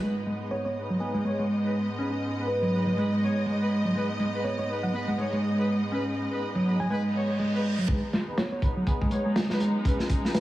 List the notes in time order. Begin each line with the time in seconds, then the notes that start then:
0.01 G#2 G#3 B3 D#4 G#4 B4 D#5
0.26 G#3
0.40 B3 D#4 G#4 B4
0.51 B3 C#5
0.65 B3 C#5
0.76 B3 D#4 G#4 B4
0.90 F#3
1.00 B3 D#4 G#4 B4
1.14 G#3 G#4
1.25 G#3 B3 D#4 G#4 C#5
1.39 G#3
1.64 B3 D#4 G#4 B4
1.99 B3 C#4 D#4 G#4 B4
2.38 B3 D#4 G#4 B4
2.48 B4
2.62 F#3
2.72 B3 D#4 G#4 B4
2.86 F#3
2.97 G#3 B3 D#4 G#4 B4
3.22 B3 D#4 G#4 C#5
3.46 G#3
3.60 B3 D#4 G#4 B4
3.85 F#3
3.95 G#3 B3 D#4 G#4 B4
4.20 G#3
4.34 B3 D#4 G#4 B4
4.44 B3 C#5
4.59 B3 C#5
4.69 B3 D#4 G#4 B4
4.83 F#3 F#5
4.93 B3 D#4 G#4 B4 F#5
5.08 G#3 F#5
5.18 G#3 B3 D#4 G#4 C#5
5.32 G#3
5.57 B3 D#4 G#4 B4
5.92 B3 C#4 D#4 G#4 B4
6.31 B3 D#4 G#4 B4
6.55 F#3
6.66 B3 D#4 G#4 B4
6.80 F#3 G#5
6.90 G#3 B3 D#4 G#4 B4 G#5, reverse cymbal
7.15 B3 D#4 G#4 C#5
7.39 G#3
7.54 B3 D#4 G#4 B4
7.78 F#3
7.88 G#1 G#3 B3 D#4 G#4 B4, kick, closed hi-hat, riser
8.13 G#3, snare, closed hi-hat
8.27 G#1 B3 D#4 G#4 B4
8.38 B3 C#5, snare, closed hi-hat
8.52 B3 C#5
8.62 G#1 B3 D#4 G#4 B4, kick, closed hi-hat
8.76 F#3
8.87 D#2 B3 D#4 G#4 B4, kick, closed hi-hat
9.01 D#2 G#3 G#4, kick
9.11 G#3 B3 D#4 G#4 C#5, closed hi-hat
9.26 G#3
9.36 G#1, snare, closed hi-hat
9.50 B3 D#4 G#4 B4, snare
9.60 G#1, closed hi-hat
9.85 G#1 B3 C#4 D#4 G#4 B4, kick, closed hi-hat
9.99 snare
10.09 kick, closed hi-hat
10.24 G#1 B3 D#4 G#4 B4, snare
10.34 B4, snare, closed hi-hat